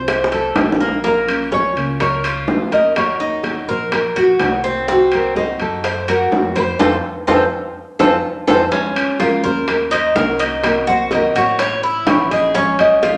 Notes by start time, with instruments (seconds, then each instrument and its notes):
Already playing: upright bass C2, nylon-string guitar C5, cuban tres C5
0.07 muted steel-string acoustic guitar stroke, high bongo, high timbale
0.24 high bongo
0.32 cuban tres A4, nylon-string guitar A4, high timbale
0.55 upright bass A#1, steel-string acoustic guitar C3 F3 A3 C4 F4, low bongo, high timbale, low timbale
0.72 low bongo
0.79 steel-string acoustic guitar A3 C4 F4, cuban tres A#3
0.88 low bongo
1.03 steel-string acoustic guitar F3 A#3 C#4 F4, cuban tres A#3, nylon-string guitar A#4, high bongo
1.27 steel-string acoustic guitar A#3 C#4 F4, high bongo, high timbale
1.51 steel-string acoustic guitar F3 A#3 C#4 F4, cuban tres C#4, nylon-string guitar C#5, high bongo, low timbale
1.75 upright bass C#2, steel-string acoustic guitar A#3 C#4 F4, high timbale
2.00 cuban tres A#4, nylon-string guitar C#5, muted steel-string acoustic guitar stroke, high bongo, high timbale
2.24 cuban tres F4, high bongo, high timbale
2.47 upright bass D#2, steel-string acoustic guitar F3 A#3 C#4 F4, high bongo, low bongo, low timbale
2.71 steel-string acoustic guitar A#3 C#4 F4, cuban tres A#4, nylon-string guitar D#5, high bongo, high timbale
2.95 steel-string acoustic guitar D#3 A#3 D#4 F#4, nylon-string guitar C#5, high bongo, high timbale
3.19 steel-string acoustic guitar A#3 D#4 F#4, cuban tres D#4, high bongo
3.43 steel-string acoustic guitar D#3 A#3 D#4 F#4, high bongo, high timbale, low timbale
3.67 upright bass A#1, steel-string acoustic guitar A#3 D#4 F#4, cuban tres A#4, nylon-string guitar C5
3.92 nylon-string guitar A#4, muted steel-string acoustic guitar stroke, high bongo, high timbale
4.16 upright bass A#1, cuban tres F#4, nylon-string guitar F#4, high bongo, high timbale
4.39 upright bass C2, steel-string acoustic guitar D#3 A#3 D#4 F#4, high bongo, low bongo, high timbale, low timbale
4.63 steel-string acoustic guitar A#3 D#4 F#4, cuban tres C4, high bongo
4.87 steel-string acoustic guitar C4 D#4 F#4, cuban tres C4, high bongo
4.92 nylon-string guitar F#4
5.11 steel-string acoustic guitar D#4 F#4, nylon-string guitar A#4, high bongo, high timbale
5.35 steel-string acoustic guitar C4 D#4 F#4, cuban tres D#4, nylon-string guitar C5, high bongo, low timbale
5.59 upright bass F#2, steel-string acoustic guitar D#4 F#4, nylon-string guitar A4, high timbale
5.83 cuban tres C5, muted steel-string acoustic guitar stroke, high bongo, high timbale
6.08 cuban tres F#4, nylon-string guitar A#4, high bongo, high timbale
6.31 upright bass F2, steel-string acoustic guitar C4 D#4 F#4, high bongo, low bongo, low timbale
6.55 steel-string acoustic guitar D#4 F#4, cuban tres C5, nylon-string guitar C5, high bongo, high timbale
6.79 upright bass F2, steel-string acoustic guitar A3 C4 F4, cuban tres C4 F4 A4, nylon-string guitar F4 A4 C5, low bongo, high timbale
7.27 upright bass F2, steel-string acoustic guitar A3 C4 F4, cuban tres C4 F4 A4, nylon-string guitar F4 A4 C5, low bongo, high timbale
7.99 upright bass F2, steel-string acoustic guitar A3 C4 F4, cuban tres C4 F4 A4, nylon-string guitar F4 A4 C5, low bongo, high timbale
8.47 upright bass F2, steel-string acoustic guitar A3 C4 F4, cuban tres C4 F4 A4, nylon-string guitar F4 A4 C5, low bongo, high timbale
8.71 steel-string acoustic guitar F3 G#3 C#4 F4, cuban tres C#4, high bongo
8.95 steel-string acoustic guitar G#3 C#4 F4, high timbale
9.19 steel-string acoustic guitar F3 G#3 C#4 F4, cuban tres F4, nylon-string guitar A#4, high bongo, high timbale
9.43 upright bass D#2, steel-string acoustic guitar G#3 C#4 F4, cuban tres A#4, nylon-string guitar C5
9.67 nylon-string guitar A#4, muted steel-string acoustic guitar stroke, high bongo, high timbale
9.91 cuban tres D#4, nylon-string guitar C5, high timbale
10.15 upright bass C2, steel-string acoustic guitar D#3 A#3 C#4 F#4, cuban tres A#4, high bongo, low bongo
10.39 steel-string acoustic guitar A#3, cuban tres D#4, high timbale
10.62 steel-string acoustic guitar C3 D#3 A#3 C4 F#4, high bongo, high timbale
10.66 nylon-string guitar A#4
10.86 steel-string acoustic guitar A#3 C4 F#4, cuban tres F#4, nylon-string guitar C5, high bongo
11.11 steel-string acoustic guitar C3 D#3 A#3 C4 F#4, cuban tres D#5, high bongo, high timbale
11.15 nylon-string guitar A#4
11.35 upright bass A1, steel-string acoustic guitar A#3 C4 F#4, cuban tres F#4, nylon-string guitar C#5, high timbale
11.59 cuban tres C#5, muted steel-string acoustic guitar stroke, high bongo, high timbale
11.83 cuban tres E4, high bongo
12.06 upright bass A#1, steel-string acoustic guitar E3 A3 C#4 F#4, nylon-string guitar C#5, high bongo, low bongo, high timbale
12.30 steel-string acoustic guitar A3 C#4 F#4, cuban tres G#4, nylon-string guitar D#5, high bongo, high timbale
12.54 steel-string acoustic guitar F3 G#3 C#4 F4, cuban tres C#4, nylon-string guitar C#5, high bongo
12.78 steel-string acoustic guitar G#3 C#4 F4, nylon-string guitar D#5, high timbale
13.02 steel-string acoustic guitar F3 G#3 C#4 F4, cuban tres F4, high bongo, high timbale